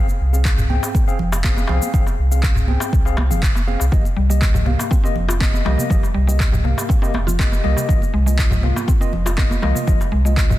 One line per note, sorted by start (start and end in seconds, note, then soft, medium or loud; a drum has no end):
0.08 muted conga soft
0.08 shaker soft
0.20 0.78 C2 medium
0.33 0.67 C4 medium
0.33 0.67 G#4 medium
0.33 0.67 F5 medium
0.33 shaker medium
0.45 kick loud
0.45 clap loud
0.45 muted conga soft
0.45 shaker medium
0.58 darbuka dum medium
0.58 shaker soft
0.70 1.05 C4 medium
0.70 1.05 G#4 medium
0.70 1.04 G5 medium
0.70 high conga medium
0.83 muted conga soft
0.83 darbuka tek medium
0.83 shaker medium
0.95 kick loud
0.95 high conga medium
0.95 shaker medium
1.08 1.18 C4 medium
1.08 1.17 G#4 medium
1.08 1.18 F5 loud
1.08 shaker soft
1.19 1.65 F1 medium
1.19 low conga loud
1.32 muted conga soft
1.32 darbuka tek loud
1.32 shaker medium
1.44 1.66 C4 medium
1.44 1.66 G#4 medium
1.44 1.66 F5 medium
1.44 kick loud
1.44 clap loud
1.44 high conga medium
1.44 shaker medium
1.57 darbuka tek medium
1.57 high conga loud
1.57 shaker soft
1.67 1.79 C2 medium
1.67 1.91 C4 medium
1.67 1.91 G#4 medium
1.67 1.91 F5 loud
1.67 darbuka ka loud
1.67 muted conga medium
1.67 low conga medium
1.82 high conga medium
1.82 shaker medium
1.94 2.04 F1 medium
1.94 2.05 C4 medium
1.94 2.05 G#4 medium
1.94 2.05 F5 medium
1.94 kick loud
1.94 low conga medium
1.94 shaker medium
2.06 muted conga soft
2.06 darbuka ka medium
2.06 shaker soft
2.18 2.77 C2 loud
2.31 2.66 C4 medium
2.31 2.65 G#4 medium
2.31 2.65 F5 medium
2.31 shaker medium
2.43 kick loud
2.43 clap loud
2.43 muted conga soft
2.43 shaker medium
2.55 darbuka dum medium
2.55 shaker soft
2.68 3.03 C4 medium
2.68 3.03 G#4 medium
2.68 3.03 G5 medium
2.68 high conga medium
2.80 muted conga soft
2.80 darbuka tek medium
2.80 shaker medium
2.93 3.32 C2 medium
2.93 kick loud
2.93 shaker medium
3.05 3.16 C4 medium
3.05 3.16 G#4 medium
3.05 3.16 F5 loud
3.05 darbuka ka medium
3.05 shaker soft
3.17 darbuka tek loud
3.17 high conga loud
3.31 3.76 F1 medium
3.31 3.41 C4 medium
3.31 3.41 G#4 medium
3.31 3.41 F5 medium
3.31 muted conga soft
3.31 high conga medium
3.31 low conga medium
3.31 shaker medium
3.43 kick loud
3.43 clap loud
3.43 shaker medium
3.55 darbuka tek medium
3.55 high conga medium
3.55 shaker soft
3.67 3.84 C4 medium
3.67 3.84 G#4 medium
3.67 3.84 F5 medium
3.67 muted conga soft
3.67 high conga medium
3.80 3.90 C2 medium
3.80 darbuka ka medium
3.80 shaker medium
3.92 4.02 F1 loud
3.92 3.99 F3 medium
3.92 4.03 A#3 medium
3.92 4.03 G4 medium
3.92 4.03 D#5 medium
3.92 kick loud
3.92 shaker medium
4.05 muted conga soft
4.05 shaker soft
4.17 4.75 C2 medium
4.17 4.28 G3 medium
4.30 4.41 G3 medium
4.30 4.64 A#3 medium
4.30 4.64 G4 medium
4.30 4.64 D#5 medium
4.30 shaker medium
4.41 kick loud
4.41 clap loud
4.41 muted conga soft
4.41 shaker medium
4.54 4.61 F3 medium
4.54 darbuka dum medium
4.54 shaker soft
4.66 4.78 C3 medium
4.66 5.01 A#3 medium
4.66 5.01 G4 medium
4.66 5.01 F5 medium
4.66 high conga medium
4.79 muted conga medium
4.79 darbuka tek medium
4.79 shaker medium
4.91 4.98 C4 medium
4.91 kick loud
4.91 high conga medium
4.91 shaker medium
5.04 5.14 A#3 loud
5.04 5.15 C4 medium
5.04 5.14 G4 medium
5.04 5.14 D#5 loud
5.04 shaker soft
5.15 5.62 F1 medium
5.15 low conga medium
5.28 5.35 F4 medium
5.28 muted conga soft
5.28 darbuka tek medium
5.28 shaker medium
5.40 5.63 A#3 medium
5.40 5.53 C4 medium
5.40 5.63 G4 medium
5.40 5.63 D#5 loud
5.40 kick loud
5.40 clap loud
5.40 high conga medium
5.40 shaker medium
5.54 high conga loud
5.54 darbuka tek medium
5.54 shaker soft
5.65 5.76 C2 medium
5.65 5.78 G3 medium
5.65 5.88 A#3 loud
5.65 5.88 G4 medium
5.65 5.88 D#5 loud
5.65 darbuka ka loud
5.65 muted conga soft
5.65 low conga medium
5.78 5.89 C3 medium
5.78 high conga medium
5.78 shaker medium
5.90 6.01 F1 medium
5.90 5.97 F3 medium
5.90 6.01 A#3 medium
5.90 6.01 G4 medium
5.90 6.01 D#5 medium
5.90 kick loud
5.90 low conga medium
5.90 shaker medium
6.03 darbuka ka medium
6.03 muted conga soft
6.03 shaker soft
6.14 6.73 C2 medium
6.14 6.26 G3 medium
6.27 6.39 G3 medium
6.27 6.62 A#3 medium
6.27 6.62 G4 medium
6.27 6.62 D#5 medium
6.27 shaker medium
6.40 kick loud
6.40 clap loud
6.40 muted conga soft
6.40 shaker medium
6.52 6.59 F3 medium
6.52 darbuka dum medium
6.52 shaker soft
6.64 6.76 C3 medium
6.64 7.00 A#3 medium
6.64 7.00 G4 medium
6.64 7.00 F5 medium
6.64 high conga medium
6.78 muted conga soft
6.78 darbuka tek medium
6.78 shaker medium
6.89 6.96 C4 medium
6.89 kick loud
6.89 shaker medium
7.02 7.12 A#3 loud
7.02 7.14 C4 medium
7.02 7.12 G4 medium
7.02 7.12 D#5 loud
7.02 darbuka ka medium
7.02 shaker soft
7.14 7.60 F1 medium
7.14 high conga loud
7.14 darbuka tek medium
7.27 7.34 F4 medium
7.27 muted conga soft
7.27 high conga medium
7.27 low conga medium
7.27 shaker medium
7.39 7.61 A#3 medium
7.39 7.51 C4 medium
7.39 7.61 G4 medium
7.39 7.61 D#5 loud
7.39 kick loud
7.39 clap loud
7.39 shaker medium
7.52 darbuka tek medium
7.52 high conga loud
7.52 shaker soft
7.64 7.74 C2 medium
7.64 7.76 G3 medium
7.64 7.86 A#3 medium
7.64 7.86 G4 medium
7.64 7.86 D#5 loud
7.64 muted conga soft
7.64 high conga soft
7.77 7.88 C3 medium
7.77 darbuka ka medium
7.77 shaker medium
7.89 7.99 F1 loud
7.89 7.96 F3 medium
7.89 8.00 A#3 medium
7.89 8.00 F4 medium
7.89 8.00 D#5 medium
7.89 kick loud
7.89 shaker medium
8.02 muted conga soft
8.02 shaker soft
8.14 8.72 C2 medium
8.14 8.25 G#3 medium
8.26 8.37 G#3 medium
8.26 8.61 A#3 medium
8.26 8.61 F4 medium
8.26 8.61 D#5 medium
8.26 shaker medium
8.38 kick loud
8.38 clap loud
8.38 muted conga soft
8.38 shaker medium
8.51 8.58 F3 medium
8.51 darbuka dum medium
8.51 shaker soft
8.63 8.75 C3 medium
8.63 8.98 A#3 medium
8.63 8.98 F4 medium
8.63 8.98 F5 medium
8.63 high conga medium
8.76 muted conga medium
8.76 darbuka tek medium
8.76 shaker medium
8.88 8.95 C4 medium
8.88 kick loud
8.88 high conga medium
8.88 shaker medium
9.01 9.11 A#3 medium
9.01 9.12 C4 medium
9.01 9.11 F4 medium
9.01 9.11 D#5 loud
9.01 shaker soft
9.13 9.58 F1 medium
9.13 low conga medium
9.26 9.32 F4 medium
9.26 muted conga soft
9.26 darbuka tek medium
9.26 shaker medium
9.38 9.60 A#3 medium
9.38 9.50 C4 medium
9.38 9.60 F4 medium
9.38 9.60 D#5 medium
9.38 kick loud
9.38 clap medium
9.38 high conga medium
9.38 shaker medium
9.51 high conga loud
9.51 darbuka tek medium
9.51 shaker soft
9.62 9.73 C2 medium
9.62 9.75 G#3 medium
9.62 9.85 A#3 medium
9.62 9.85 F4 medium
9.62 9.85 D#5 loud
9.62 muted conga soft
9.62 darbuka ka loud
9.62 low conga medium
9.75 9.86 C3 medium
9.75 high conga medium
9.75 shaker medium
9.87 9.98 F1 loud
9.87 9.94 F3 medium
9.87 9.98 A#3 medium
9.87 9.98 F4 medium
9.87 9.98 D#5 loud
9.87 kick loud
9.87 low conga medium
9.87 shaker medium
10.01 darbuka ka medium
10.01 muted conga medium
10.01 shaker soft
10.12 10.59 C2 loud
10.12 10.24 G#3 medium
10.25 10.36 G#3 medium
10.25 10.59 A#3 medium
10.25 10.59 F4 medium
10.25 10.59 D#5 medium
10.25 shaker medium
10.37 kick loud
10.37 clap loud
10.37 muted conga soft
10.37 shaker medium
10.50 10.56 F3 medium
10.50 darbuka dum medium
10.50 low conga medium
10.50 shaker soft